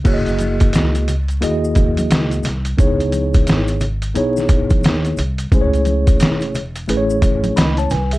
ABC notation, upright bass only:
X:1
M:4/4
L:1/8
Q:"Swing 16ths" 1/4=88
K:F#dor
V:1 name="Upright bass" clef=bass
F,,,2 C,,2 D,,2 C,, ^B,,, | C,,2 G,,,2 B,,,2 D,, ^B,,, | C,,2 E,,,2 A,,,2 C,, ^B,,, |]